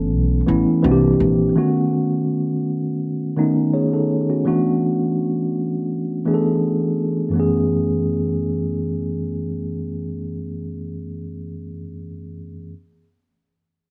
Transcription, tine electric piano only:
Already playing: E3 A3 B3 C#4 A4
0.46 E3 A3 B3 C#4 E4
0.83 E3 A#3 C4 D4 F#4
0.91 G4
1.56 D#3 A3 B3 C#4 F#4
3.37 D#3 A3 B3 C#4 D#4
3.74 G#4 C#5
3.94 D#4 A4
4.30 C#4 F#4
4.45 E3 A3 B3 D4 F#4
6.25 E3 A3 B3 D4 G#4
6.34 A4
7.29 F#2 E3
7.33 A3 B3 C#4
7.40 G#4

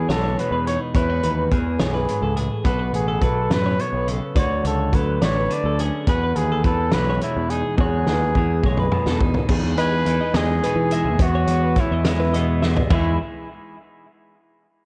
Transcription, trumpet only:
Already playing: G#4
0.11 A4
0.39 B4
0.67 C#5
0.96 B4
1.80 G#4
2.64 B4
2.95 G#4
3.23 A4
3.53 B4
3.81 C#5
4.39 C#5
4.67 A4
4.95 B4
5.24 C#5
5.53 D5
6.09 B4
6.36 G#4
6.65 A4
6.93 B4
7.22 E4
7.50 G#4
7.78 G#4
9.78 B4
10.36 G#4
11.22 F#4
11.80 E4
12.08 E4
12.91 E4

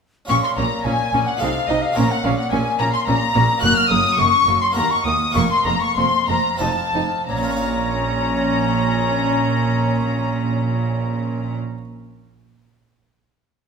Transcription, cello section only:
0.29 A#2
0.57 A#2
0.85 A#2
1.13 A#2
1.41 C3
1.68 C3
1.96 A#2
2.24 A#2
2.52 A#2
2.79 A#2
3.07 A#2
3.35 A#2
3.62 F#2
3.90 F#2
4.18 F#2
4.47 F#2
4.76 D#2
5.05 D#2
5.35 F2
5.65 F2
5.96 F2
6.28 F2
6.61 F2
6.94 F2
7.28 A#2

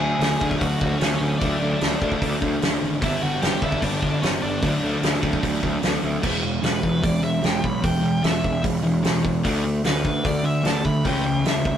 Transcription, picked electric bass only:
0.00 D2
0.19 D2
0.41 D2
0.61 D2
0.81 D2
1.01 D2
1.20 D2
1.42 D2
1.61 D2
1.82 D2
2.02 D2
2.22 D2
2.42 D2
2.62 D2
2.83 G#1
3.02 G1
3.23 G1
3.43 G1
3.62 G1
3.83 G1
4.02 G1
4.22 G1
4.43 G1
4.62 D2
4.83 D2
5.03 D2
5.23 D2
5.43 D2
5.63 D2
5.83 D2
6.03 D2
6.23 E1
6.62 E1
6.84 E1
7.04 E1
7.22 E1
7.42 E1
7.64 B1
7.84 E1
8.02 E1
8.23 E1
8.44 E1
8.64 E1
8.83 E1
9.04 E1
9.44 D2
9.84 D2
10.05 D2
10.25 D2
10.43 D2
10.63 D2
10.84 D2
11.06 C#2
11.26 C#2
11.47 C#2
11.65 C#2

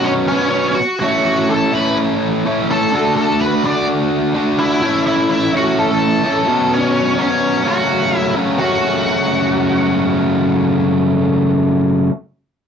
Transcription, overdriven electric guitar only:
Already playing: B2 F#3 B3 C#4
0.32 B2 F#3 B3 C#4
1.02 A2 E3 A3 C#4 E4
1.73 A2 E3 A3 C#4 E4
2.45 A2 E3 A3 C#4 E4
2.91 D3 A3 D4 F#4
3.64 D3 A3 D4 F#4
4.34 D3 A3 D4 F#4
4.82 A2 E3 A3 C#4 E4
5.53 A2 E3 A3 C#4 E4
6.23 A2 E3 A3 C#4 E4
6.46 B2 F#3 B3 C#4
7.17 B2 F#3 B3 C#4
7.64 F#2 C#3 F#3 A3 C#4
8.36 F#2 C#3 F#3 A3 C#4
8.59 F#2 C#3 F#3 A3 C#4 F#4

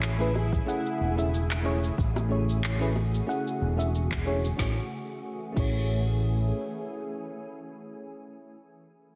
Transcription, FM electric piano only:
Already playing: A3 C#4 E4 G#4 C#5
0.19 A3 C#4 E4 G#4 B4
0.66 A3 C#4 E4 G#4 F#5
1.16 A3 C#4 E4 G#4 E5
1.63 A3 C#4 E4 G#4 C#5
2.29 A3 C#4 E4 G#4 C#5
2.79 A3 C#4 E4 G#4 B4
3.26 A3 C#4 E4 G#4 F#5
3.76 A3 C#4 E4 G#4 E5
4.24 A3 C#4 E4 G#4 C#5
4.55 A3 C#4 E4
4.60 G#4 C#5
5.52 A3 C#4 E4
5.58 G#4 C#5

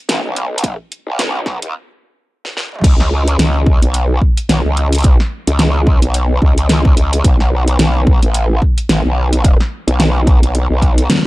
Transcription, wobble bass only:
0.09 A1
0.24 B1
1.07 B1
1.62 D#2
2.84 C#2
3.39 C#2
3.82 B1
4.49 B1
4.65 C#2
5.02 C2
5.47 C#2
6.02 B1
6.42 C#2
6.96 C#2
7.24 B1
7.79 B1
8.23 A1
8.89 A1
9.05 B1
9.87 B1
10.42 B1
10.70 B1

